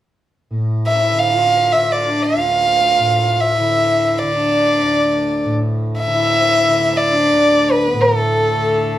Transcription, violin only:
0, 0, Header, 1, 2, 480
1, 0, Start_track
1, 0, Tempo, 500000
1, 8626, End_track
2, 0, Start_track
2, 0, Title_t, "Violin"
2, 0, Program_c, 0, 40
2, 838, Note_on_c, 0, 76, 76
2, 1140, Note_on_c, 0, 77, 77
2, 1155, Note_off_c, 0, 76, 0
2, 1654, Note_on_c, 0, 76, 66
2, 1668, Note_off_c, 0, 77, 0
2, 1839, Note_on_c, 0, 74, 64
2, 1853, Note_off_c, 0, 76, 0
2, 2137, Note_on_c, 0, 77, 77
2, 2152, Note_off_c, 0, 74, 0
2, 3269, Note_on_c, 0, 76, 75
2, 3283, Note_off_c, 0, 77, 0
2, 4018, Note_on_c, 0, 74, 71
2, 4032, Note_off_c, 0, 76, 0
2, 5272, Note_off_c, 0, 74, 0
2, 5745, Note_on_c, 0, 76, 83
2, 6688, Note_on_c, 0, 74, 78
2, 6703, Note_off_c, 0, 76, 0
2, 7406, Note_on_c, 0, 71, 66
2, 7421, Note_off_c, 0, 74, 0
2, 7690, Note_on_c, 0, 70, 61
2, 7705, Note_off_c, 0, 71, 0
2, 7834, Note_off_c, 0, 70, 0
2, 7834, Note_on_c, 0, 69, 61
2, 8626, Note_off_c, 0, 69, 0
2, 8626, End_track
0, 0, End_of_file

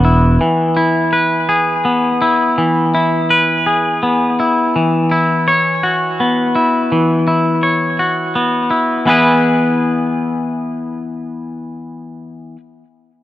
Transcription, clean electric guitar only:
0, 0, Header, 1, 2, 480
1, 0, Start_track
1, 0, Key_signature, 4, "major"
1, 0, Tempo, 721154
1, 275, Time_signature, 6, 3, 24, 8
1, 8809, End_track
2, 0, Start_track
2, 0, Title_t, "Clean electric guitar"
2, 0, Program_c, 0, 27
2, 0, Note_on_c, 0, 59, 38
2, 0, Note_on_c, 0, 66, 39
2, 0, Note_on_c, 0, 73, 44
2, 31, Note_on_c, 0, 64, 37
2, 272, Note_on_c, 0, 52, 42
2, 273, Note_off_c, 0, 64, 0
2, 273, Note_off_c, 0, 73, 0
2, 276, Note_off_c, 0, 66, 0
2, 510, Note_on_c, 0, 64, 44
2, 750, Note_on_c, 0, 71, 45
2, 991, Note_on_c, 0, 68, 39
2, 1228, Note_off_c, 0, 59, 0
2, 1231, Note_on_c, 0, 59, 39
2, 1467, Note_off_c, 0, 64, 0
2, 1475, Note_on_c, 0, 64, 42
2, 1476, Note_off_c, 0, 52, 0
2, 1717, Note_on_c, 0, 52, 43
2, 1953, Note_off_c, 0, 64, 0
2, 1961, Note_on_c, 0, 64, 40
2, 2195, Note_off_c, 0, 68, 0
2, 2197, Note_off_c, 0, 71, 0
2, 2199, Note_on_c, 0, 71, 45
2, 2439, Note_on_c, 0, 68, 39
2, 2679, Note_off_c, 0, 59, 0
2, 2682, Note_on_c, 0, 59, 40
2, 2918, Note_off_c, 0, 52, 0
2, 2919, Note_off_c, 0, 64, 0
2, 2927, Note_on_c, 0, 64, 40
2, 3159, Note_off_c, 0, 68, 0
2, 3163, Note_off_c, 0, 64, 0
2, 3167, Note_on_c, 0, 52, 43
2, 3404, Note_on_c, 0, 64, 37
2, 3643, Note_off_c, 0, 71, 0
2, 3645, Note_on_c, 0, 73, 45
2, 3665, Note_off_c, 0, 59, 0
2, 3883, Note_on_c, 0, 66, 40
2, 4128, Note_on_c, 0, 59, 37
2, 4355, Note_off_c, 0, 64, 0
2, 4362, Note_off_c, 0, 52, 0
2, 4363, Note_on_c, 0, 64, 38
2, 4605, Note_on_c, 0, 52, 38
2, 4835, Note_off_c, 0, 64, 0
2, 4841, Note_off_c, 0, 73, 0
2, 4843, Note_on_c, 0, 64, 37
2, 5079, Note_off_c, 0, 66, 0
2, 5079, Note_on_c, 0, 73, 38
2, 5320, Note_on_c, 0, 66, 35
2, 5321, Note_off_c, 0, 59, 0
2, 5561, Note_on_c, 0, 59, 36
2, 5786, Note_off_c, 0, 64, 0
2, 5794, Note_on_c, 0, 64, 35
2, 5800, Note_off_c, 0, 52, 0
2, 6028, Note_off_c, 0, 59, 0
2, 6028, Note_on_c, 0, 52, 45
2, 6034, Note_off_c, 0, 64, 0
2, 6036, Note_off_c, 0, 73, 0
2, 6036, Note_on_c, 0, 59, 46
2, 6037, Note_off_c, 0, 66, 0
2, 6042, Note_on_c, 0, 64, 50
2, 6048, Note_on_c, 0, 68, 46
2, 6055, Note_on_c, 0, 71, 52
2, 8358, Note_off_c, 0, 52, 0
2, 8365, Note_off_c, 0, 59, 0
2, 8371, Note_off_c, 0, 64, 0
2, 8378, Note_off_c, 0, 68, 0
2, 8384, Note_off_c, 0, 71, 0
2, 8809, End_track
0, 0, End_of_file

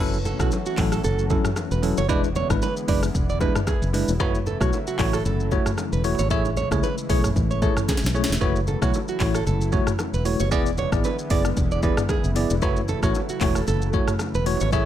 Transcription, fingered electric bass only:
0, 0, Header, 1, 2, 480
1, 0, Start_track
1, 0, Key_signature, 3, "minor"
1, 0, Tempo, 526316
1, 1910, Time_signature, 4, 2, 24, 8
1, 13546, End_track
2, 0, Start_track
2, 0, Title_t, "Fingered electric bass"
2, 0, Program_c, 0, 33
2, 0, Note_on_c, 0, 30, 112
2, 286, Note_off_c, 0, 30, 0
2, 359, Note_on_c, 0, 35, 94
2, 446, Note_off_c, 0, 35, 0
2, 710, Note_on_c, 0, 33, 96
2, 901, Note_off_c, 0, 33, 0
2, 950, Note_on_c, 0, 30, 110
2, 1246, Note_off_c, 0, 30, 0
2, 1561, Note_on_c, 0, 28, 93
2, 1752, Note_off_c, 0, 28, 0
2, 1802, Note_on_c, 0, 30, 84
2, 1910, Note_off_c, 0, 30, 0
2, 1910, Note_on_c, 0, 28, 109
2, 2206, Note_off_c, 0, 28, 0
2, 2280, Note_on_c, 0, 32, 101
2, 2367, Note_off_c, 0, 32, 0
2, 2631, Note_on_c, 0, 30, 90
2, 2821, Note_off_c, 0, 30, 0
2, 2872, Note_on_c, 0, 28, 105
2, 3167, Note_off_c, 0, 28, 0
2, 3483, Note_on_c, 0, 30, 95
2, 3674, Note_off_c, 0, 30, 0
2, 3722, Note_on_c, 0, 28, 94
2, 3831, Note_off_c, 0, 28, 0
2, 3831, Note_on_c, 0, 30, 122
2, 4127, Note_off_c, 0, 30, 0
2, 4202, Note_on_c, 0, 35, 98
2, 4288, Note_off_c, 0, 35, 0
2, 4552, Note_on_c, 0, 33, 98
2, 4742, Note_off_c, 0, 33, 0
2, 4791, Note_on_c, 0, 30, 110
2, 5086, Note_off_c, 0, 30, 0
2, 5403, Note_on_c, 0, 28, 94
2, 5593, Note_off_c, 0, 28, 0
2, 5643, Note_on_c, 0, 32, 93
2, 5728, Note_off_c, 0, 32, 0
2, 5750, Note_on_c, 0, 33, 107
2, 6046, Note_off_c, 0, 33, 0
2, 6122, Note_on_c, 0, 37, 97
2, 6208, Note_off_c, 0, 37, 0
2, 6472, Note_on_c, 0, 35, 89
2, 6662, Note_off_c, 0, 35, 0
2, 6714, Note_on_c, 0, 33, 108
2, 7008, Note_off_c, 0, 33, 0
2, 7323, Note_on_c, 0, 35, 100
2, 7514, Note_off_c, 0, 35, 0
2, 7564, Note_on_c, 0, 28, 92
2, 7649, Note_off_c, 0, 28, 0
2, 7672, Note_on_c, 0, 30, 109
2, 7967, Note_off_c, 0, 30, 0
2, 8043, Note_on_c, 0, 35, 99
2, 8128, Note_off_c, 0, 35, 0
2, 8392, Note_on_c, 0, 33, 93
2, 8582, Note_off_c, 0, 33, 0
2, 8633, Note_on_c, 0, 30, 102
2, 8928, Note_off_c, 0, 30, 0
2, 9243, Note_on_c, 0, 28, 90
2, 9434, Note_off_c, 0, 28, 0
2, 9484, Note_on_c, 0, 30, 88
2, 9591, Note_off_c, 0, 30, 0
2, 9591, Note_on_c, 0, 28, 109
2, 9886, Note_off_c, 0, 28, 0
2, 9961, Note_on_c, 0, 32, 99
2, 10047, Note_off_c, 0, 32, 0
2, 10310, Note_on_c, 0, 30, 96
2, 10501, Note_off_c, 0, 30, 0
2, 10552, Note_on_c, 0, 28, 107
2, 10847, Note_off_c, 0, 28, 0
2, 11163, Note_on_c, 0, 30, 93
2, 11353, Note_off_c, 0, 30, 0
2, 11402, Note_on_c, 0, 28, 95
2, 11510, Note_off_c, 0, 28, 0
2, 11510, Note_on_c, 0, 30, 108
2, 11806, Note_off_c, 0, 30, 0
2, 11881, Note_on_c, 0, 33, 87
2, 11967, Note_off_c, 0, 33, 0
2, 12231, Note_on_c, 0, 28, 92
2, 12421, Note_off_c, 0, 28, 0
2, 12472, Note_on_c, 0, 30, 113
2, 12767, Note_off_c, 0, 30, 0
2, 13083, Note_on_c, 0, 28, 93
2, 13273, Note_off_c, 0, 28, 0
2, 13322, Note_on_c, 0, 32, 87
2, 13408, Note_off_c, 0, 32, 0
2, 13430, Note_on_c, 0, 33, 109
2, 13546, Note_off_c, 0, 33, 0
2, 13546, End_track
0, 0, End_of_file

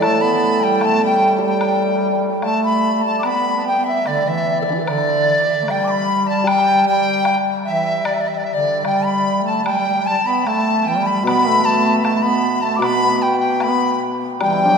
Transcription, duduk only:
0, 0, Header, 1, 2, 480
1, 0, Start_track
1, 0, Tempo, 806452
1, 18, Time_signature, 2, 2, 24, 8
1, 3379, Tempo, 788436
1, 4819, Tempo, 804290
1, 6739, Tempo, 785340
1, 8179, Tempo, 815217
1, 8863, End_track
2, 0, Start_track
2, 0, Title_t, "Duduk"
2, 0, Program_c, 0, 69
2, 18, Note_on_c, 0, 57, 83
2, 118, Note_off_c, 0, 57, 0
2, 122, Note_on_c, 0, 59, 72
2, 347, Note_off_c, 0, 59, 0
2, 362, Note_on_c, 0, 55, 71
2, 477, Note_off_c, 0, 55, 0
2, 494, Note_on_c, 0, 57, 82
2, 603, Note_off_c, 0, 57, 0
2, 608, Note_on_c, 0, 55, 72
2, 830, Note_off_c, 0, 55, 0
2, 852, Note_on_c, 0, 55, 69
2, 1423, Note_off_c, 0, 55, 0
2, 1451, Note_on_c, 0, 57, 80
2, 1788, Note_off_c, 0, 57, 0
2, 1811, Note_on_c, 0, 57, 58
2, 1924, Note_off_c, 0, 57, 0
2, 1931, Note_on_c, 0, 59, 82
2, 1969, Note_off_c, 0, 59, 0
2, 1973, Note_on_c, 0, 59, 53
2, 2013, Note_off_c, 0, 59, 0
2, 2017, Note_on_c, 0, 59, 65
2, 2061, Note_off_c, 0, 59, 0
2, 2072, Note_on_c, 0, 59, 46
2, 2112, Note_off_c, 0, 59, 0
2, 2119, Note_on_c, 0, 59, 58
2, 2158, Note_off_c, 0, 59, 0
2, 2166, Note_on_c, 0, 59, 48
2, 2204, Note_off_c, 0, 59, 0
2, 2212, Note_on_c, 0, 59, 54
2, 2249, Note_off_c, 0, 59, 0
2, 2254, Note_on_c, 0, 59, 48
2, 2289, Note_off_c, 0, 59, 0
2, 2293, Note_on_c, 0, 59, 56
2, 2331, Note_off_c, 0, 59, 0
2, 2334, Note_on_c, 0, 59, 51
2, 2377, Note_off_c, 0, 59, 0
2, 2407, Note_on_c, 0, 50, 68
2, 2524, Note_off_c, 0, 50, 0
2, 2534, Note_on_c, 0, 52, 76
2, 2760, Note_off_c, 0, 52, 0
2, 2787, Note_on_c, 0, 52, 73
2, 2896, Note_off_c, 0, 52, 0
2, 2906, Note_on_c, 0, 50, 85
2, 3244, Note_off_c, 0, 50, 0
2, 3345, Note_on_c, 0, 57, 51
2, 3387, Note_on_c, 0, 55, 89
2, 3396, Note_off_c, 0, 57, 0
2, 3861, Note_off_c, 0, 55, 0
2, 3866, Note_on_c, 0, 55, 80
2, 4082, Note_off_c, 0, 55, 0
2, 4104, Note_on_c, 0, 55, 84
2, 4398, Note_off_c, 0, 55, 0
2, 4585, Note_on_c, 0, 52, 61
2, 4807, Note_off_c, 0, 52, 0
2, 5106, Note_on_c, 0, 50, 60
2, 5284, Note_off_c, 0, 50, 0
2, 5298, Note_on_c, 0, 55, 79
2, 5634, Note_off_c, 0, 55, 0
2, 5646, Note_on_c, 0, 57, 60
2, 5764, Note_off_c, 0, 57, 0
2, 5772, Note_on_c, 0, 55, 66
2, 5814, Note_off_c, 0, 55, 0
2, 5817, Note_on_c, 0, 55, 59
2, 5855, Note_off_c, 0, 55, 0
2, 5859, Note_on_c, 0, 55, 60
2, 5905, Note_off_c, 0, 55, 0
2, 5912, Note_on_c, 0, 55, 59
2, 5950, Note_off_c, 0, 55, 0
2, 5954, Note_on_c, 0, 55, 60
2, 5995, Note_off_c, 0, 55, 0
2, 5999, Note_on_c, 0, 55, 57
2, 6037, Note_off_c, 0, 55, 0
2, 6040, Note_on_c, 0, 55, 59
2, 6085, Note_off_c, 0, 55, 0
2, 6136, Note_on_c, 0, 59, 80
2, 6251, Note_off_c, 0, 59, 0
2, 6263, Note_on_c, 0, 57, 81
2, 6485, Note_off_c, 0, 57, 0
2, 6508, Note_on_c, 0, 55, 76
2, 6725, Note_off_c, 0, 55, 0
2, 6734, Note_on_c, 0, 59, 91
2, 6881, Note_off_c, 0, 59, 0
2, 6881, Note_on_c, 0, 57, 91
2, 6959, Note_off_c, 0, 57, 0
2, 6968, Note_on_c, 0, 57, 81
2, 7195, Note_off_c, 0, 57, 0
2, 7206, Note_on_c, 0, 57, 81
2, 7321, Note_off_c, 0, 57, 0
2, 7331, Note_on_c, 0, 59, 82
2, 7555, Note_off_c, 0, 59, 0
2, 7574, Note_on_c, 0, 57, 68
2, 7685, Note_off_c, 0, 57, 0
2, 7690, Note_on_c, 0, 59, 90
2, 7728, Note_off_c, 0, 59, 0
2, 7731, Note_on_c, 0, 59, 61
2, 7771, Note_off_c, 0, 59, 0
2, 7774, Note_on_c, 0, 59, 76
2, 7815, Note_off_c, 0, 59, 0
2, 7819, Note_on_c, 0, 59, 62
2, 7855, Note_off_c, 0, 59, 0
2, 7858, Note_on_c, 0, 59, 73
2, 7900, Note_off_c, 0, 59, 0
2, 7904, Note_on_c, 0, 59, 62
2, 7952, Note_off_c, 0, 59, 0
2, 8167, Note_on_c, 0, 59, 77
2, 8393, Note_off_c, 0, 59, 0
2, 8646, Note_on_c, 0, 52, 99
2, 8863, Note_off_c, 0, 52, 0
2, 8863, End_track
0, 0, End_of_file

